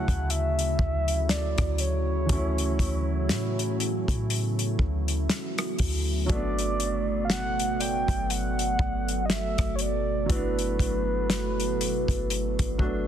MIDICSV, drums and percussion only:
0, 0, Header, 1, 2, 480
1, 0, Start_track
1, 0, Key_signature, 2, "major"
1, 0, Tempo, 1000000
1, 1102, Time_signature, 4, 2, 24, 8
1, 6276, End_track
2, 0, Start_track
2, 0, Title_t, "Drums"
2, 39, Note_on_c, 9, 36, 85
2, 43, Note_on_c, 9, 42, 52
2, 87, Note_off_c, 9, 36, 0
2, 91, Note_off_c, 9, 42, 0
2, 144, Note_on_c, 9, 42, 86
2, 192, Note_off_c, 9, 42, 0
2, 282, Note_on_c, 9, 42, 53
2, 330, Note_off_c, 9, 42, 0
2, 379, Note_on_c, 9, 36, 94
2, 427, Note_off_c, 9, 36, 0
2, 518, Note_on_c, 9, 42, 52
2, 566, Note_off_c, 9, 42, 0
2, 621, Note_on_c, 9, 38, 112
2, 622, Note_on_c, 9, 42, 65
2, 669, Note_off_c, 9, 38, 0
2, 670, Note_off_c, 9, 42, 0
2, 757, Note_on_c, 9, 42, 43
2, 760, Note_on_c, 9, 36, 98
2, 760, Note_on_c, 9, 37, 102
2, 805, Note_off_c, 9, 42, 0
2, 808, Note_off_c, 9, 36, 0
2, 808, Note_off_c, 9, 37, 0
2, 856, Note_on_c, 9, 42, 65
2, 904, Note_off_c, 9, 42, 0
2, 1100, Note_on_c, 9, 42, 67
2, 1101, Note_on_c, 9, 36, 116
2, 1148, Note_off_c, 9, 42, 0
2, 1149, Note_off_c, 9, 36, 0
2, 1240, Note_on_c, 9, 42, 53
2, 1288, Note_off_c, 9, 42, 0
2, 1340, Note_on_c, 9, 36, 88
2, 1343, Note_on_c, 9, 42, 66
2, 1388, Note_off_c, 9, 36, 0
2, 1391, Note_off_c, 9, 42, 0
2, 1581, Note_on_c, 9, 38, 108
2, 1585, Note_on_c, 9, 42, 69
2, 1629, Note_off_c, 9, 38, 0
2, 1633, Note_off_c, 9, 42, 0
2, 1724, Note_on_c, 9, 42, 47
2, 1772, Note_off_c, 9, 42, 0
2, 1825, Note_on_c, 9, 42, 76
2, 1873, Note_off_c, 9, 42, 0
2, 1959, Note_on_c, 9, 36, 82
2, 1964, Note_on_c, 9, 42, 52
2, 2007, Note_off_c, 9, 36, 0
2, 2012, Note_off_c, 9, 42, 0
2, 2065, Note_on_c, 9, 42, 85
2, 2113, Note_off_c, 9, 42, 0
2, 2203, Note_on_c, 9, 42, 56
2, 2251, Note_off_c, 9, 42, 0
2, 2299, Note_on_c, 9, 36, 89
2, 2347, Note_off_c, 9, 36, 0
2, 2439, Note_on_c, 9, 42, 50
2, 2487, Note_off_c, 9, 42, 0
2, 2542, Note_on_c, 9, 38, 107
2, 2542, Note_on_c, 9, 42, 66
2, 2590, Note_off_c, 9, 38, 0
2, 2590, Note_off_c, 9, 42, 0
2, 2679, Note_on_c, 9, 42, 44
2, 2681, Note_on_c, 9, 37, 105
2, 2727, Note_off_c, 9, 42, 0
2, 2729, Note_off_c, 9, 37, 0
2, 2777, Note_on_c, 9, 46, 69
2, 2782, Note_on_c, 9, 36, 88
2, 2825, Note_off_c, 9, 46, 0
2, 2830, Note_off_c, 9, 36, 0
2, 3022, Note_on_c, 9, 36, 123
2, 3022, Note_on_c, 9, 42, 65
2, 3070, Note_off_c, 9, 36, 0
2, 3070, Note_off_c, 9, 42, 0
2, 3161, Note_on_c, 9, 42, 56
2, 3209, Note_off_c, 9, 42, 0
2, 3263, Note_on_c, 9, 42, 65
2, 3311, Note_off_c, 9, 42, 0
2, 3502, Note_on_c, 9, 38, 107
2, 3506, Note_on_c, 9, 42, 70
2, 3550, Note_off_c, 9, 38, 0
2, 3554, Note_off_c, 9, 42, 0
2, 3645, Note_on_c, 9, 42, 48
2, 3693, Note_off_c, 9, 42, 0
2, 3747, Note_on_c, 9, 42, 72
2, 3795, Note_off_c, 9, 42, 0
2, 3880, Note_on_c, 9, 36, 82
2, 3884, Note_on_c, 9, 42, 52
2, 3928, Note_off_c, 9, 36, 0
2, 3932, Note_off_c, 9, 42, 0
2, 3984, Note_on_c, 9, 42, 86
2, 4032, Note_off_c, 9, 42, 0
2, 4123, Note_on_c, 9, 42, 57
2, 4171, Note_off_c, 9, 42, 0
2, 4220, Note_on_c, 9, 36, 91
2, 4268, Note_off_c, 9, 36, 0
2, 4361, Note_on_c, 9, 42, 51
2, 4409, Note_off_c, 9, 42, 0
2, 4462, Note_on_c, 9, 38, 109
2, 4463, Note_on_c, 9, 42, 65
2, 4510, Note_off_c, 9, 38, 0
2, 4511, Note_off_c, 9, 42, 0
2, 4599, Note_on_c, 9, 42, 44
2, 4601, Note_on_c, 9, 36, 98
2, 4602, Note_on_c, 9, 37, 100
2, 4647, Note_off_c, 9, 42, 0
2, 4649, Note_off_c, 9, 36, 0
2, 4650, Note_off_c, 9, 37, 0
2, 4697, Note_on_c, 9, 42, 61
2, 4745, Note_off_c, 9, 42, 0
2, 4942, Note_on_c, 9, 36, 123
2, 4942, Note_on_c, 9, 42, 62
2, 4990, Note_off_c, 9, 36, 0
2, 4990, Note_off_c, 9, 42, 0
2, 5081, Note_on_c, 9, 42, 57
2, 5129, Note_off_c, 9, 42, 0
2, 5181, Note_on_c, 9, 36, 90
2, 5184, Note_on_c, 9, 42, 69
2, 5229, Note_off_c, 9, 36, 0
2, 5232, Note_off_c, 9, 42, 0
2, 5422, Note_on_c, 9, 38, 105
2, 5426, Note_on_c, 9, 42, 69
2, 5470, Note_off_c, 9, 38, 0
2, 5474, Note_off_c, 9, 42, 0
2, 5566, Note_on_c, 9, 42, 46
2, 5614, Note_off_c, 9, 42, 0
2, 5668, Note_on_c, 9, 42, 71
2, 5716, Note_off_c, 9, 42, 0
2, 5800, Note_on_c, 9, 36, 87
2, 5805, Note_on_c, 9, 42, 53
2, 5848, Note_off_c, 9, 36, 0
2, 5853, Note_off_c, 9, 42, 0
2, 5905, Note_on_c, 9, 42, 85
2, 5953, Note_off_c, 9, 42, 0
2, 6043, Note_on_c, 9, 42, 56
2, 6044, Note_on_c, 9, 36, 89
2, 6091, Note_off_c, 9, 42, 0
2, 6092, Note_off_c, 9, 36, 0
2, 6140, Note_on_c, 9, 36, 97
2, 6188, Note_off_c, 9, 36, 0
2, 6276, End_track
0, 0, End_of_file